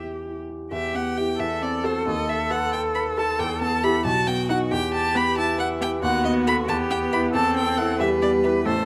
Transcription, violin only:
0.73 0.96 E5 medium
0.95 1.19 F#5 medium
1.17 1.41 G5 medium
1.40 1.63 E5 medium
1.62 1.86 D5 medium
1.85 2.06 C5 medium
2.07 2.30 D#5 medium
2.29 2.52 E5 medium
2.51 2.72 F#5 medium
2.73 2.81 G5 medium
2.95 3.03 B5 medium
3.18 3.41 A5 medium
3.39 3.61 G5 medium
3.61 3.85 A5 medium
3.83 4.04 B5 medium
4.05 4.29 A5 medium
4.27 4.49 G5 medium
4.50 4.58 F#5 medium
4.72 4.93 G5 medium
4.93 5.17 A5 medium
5.16 5.37 B5 medium
5.37 5.59 A5 medium
5.59 5.67 F#5 medium
5.82 5.90 G5 medium
6.03 6.24 F#5 medium
6.25 6.33 D#5 medium
6.47 6.55 B5 medium
6.69 6.77 A5 medium
6.91 6.99 G5 medium
7.13 7.21 B5 medium
7.34 7.55 A5 medium
7.56 7.79 G5 medium
7.77 8.00 F#5 medium
8.00 8.08 E5 medium
8.22 8.30 D5 medium
8.44 8.52 B4 medium
8.66 8.85 C5 medium

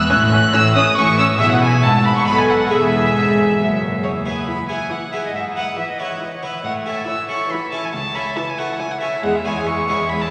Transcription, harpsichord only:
0.07 1.35 C#4 medium
0.07 1.35 E4 medium
0.07 1.36 A4 medium
0.11 0.46 A2 medium
0.54 0.89 A2 medium
0.97 1.32 A2 medium
1.36 2.23 B3 medium
1.36 2.23 E4 medium
1.36 2.24 G#4 medium
1.41 1.80 B2 medium
1.84 2.24 G#2 medium
2.24 2.66 B3 medium
2.24 2.69 D#4 medium
2.24 2.70 A4 medium
2.28 2.68 B2 medium
2.67 3.55 B3 medium
2.67 3.98 E4 medium
2.67 3.99 G#4 medium
2.71 3.12 E2 medium
3.15 3.56 G#2 medium
3.60 4.00 F#2 medium
4.04 4.37 E2 soft
4.25 4.57 B3 soft
4.25 4.57 E4 soft
4.25 4.58 G#4 soft
4.69 5.00 B3 soft
4.69 5.00 E4 soft
4.69 5.01 G#4 soft
5.13 5.28 B3 soft
5.13 5.28 E4 soft
5.13 5.29 G#4 soft
5.35 5.68 G#2 soft
5.56 5.87 B3 soft
5.56 5.88 E4 soft
5.56 5.88 B4 soft
5.99 6.30 B3 soft
5.99 6.31 E4 soft
5.99 6.31 B4 soft
6.43 6.58 B3 soft
6.43 6.58 E4 soft
6.43 6.59 B4 soft
6.64 6.97 A2 soft
6.86 7.17 C#4 soft
6.86 7.17 E4 soft
6.86 7.17 A4 soft
7.29 7.60 C#4 soft
7.29 7.60 E4 soft
7.29 7.60 A4 soft
7.72 7.88 C#4 soft
7.72 7.88 E4 soft
7.72 7.88 A4 soft
7.93 8.26 C#2 soft
8.15 8.46 C#4 soft
8.15 8.46 E4 soft
8.15 8.46 A4 soft
8.58 8.89 C#4 soft
8.58 8.89 E4 soft
8.58 8.90 A4 soft
9.01 9.16 C#4 soft
9.01 9.17 E4 soft
9.01 9.17 A4 soft
9.23 9.42 E2 soft
9.44 9.64 E2 soft
9.44 9.76 C#4 soft
9.44 9.76 E4 soft
9.44 9.76 G#4 soft
9.67 9.86 E2 soft
9.88 10.08 E2 soft
9.88 10.19 C#4 soft
9.88 10.20 E4 soft
9.88 10.20 G#4 soft
10.10 10.29 E2 soft

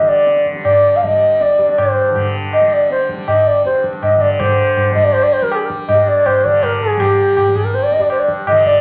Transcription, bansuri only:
0.08 0.46 D5 loud
0.64 0.98 D5 medium
0.96 1.06 F5 medium
1.04 1.43 D#5 medium
1.41 1.80 D5 medium
1.79 2.29 C5 medium
2.53 2.74 D#5 medium
2.73 2.91 D5 medium
2.91 3.08 C5 medium
3.28 3.48 D#5 medium
3.47 3.65 D5 medium
3.66 3.83 C5 medium
4.03 4.22 D#5 loud
4.21 4.32 D5 medium
4.33 4.41 D5 medium
4.39 4.94 C5 medium
4.94 5.05 D#5 loud
5.04 5.14 D5 loud
5.13 5.25 C5 loud
5.23 5.34 D5 medium
5.33 5.44 C5 medium
5.43 5.54 A#4 medium
5.53 5.64 G#4 medium
5.62 5.71 A#4 medium
5.88 6.10 D#5 loud
6.08 6.28 D5 loud
6.26 6.46 C5 loud
6.45 6.65 D5 medium
6.63 6.81 A#4 loud
6.81 7.01 G#4 medium
7.00 7.57 G4 medium
7.55 7.66 G#4 medium
7.65 7.76 A#4 medium
7.74 7.85 C5 medium
7.83 7.94 D5 medium
7.92 8.02 D#5 medium
8.01 8.10 D5 medium
8.11 8.21 C5 medium
8.20 8.29 D5 medium
8.48 8.65 D#5 loud
8.66 8.81 D5 loud

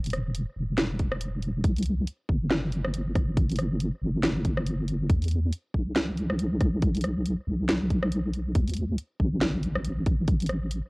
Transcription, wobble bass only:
0.00 0.46 E1 loud
0.56 1.63 E1 loud
1.64 2.06 C2 loud
2.29 3.91 G1 loud
4.02 5.08 G1 loud
5.10 5.52 E2 loud
5.74 7.36 B1 loud
7.47 8.54 B1 loud
8.55 8.97 D2 loud
9.20 10.82 A1 loud

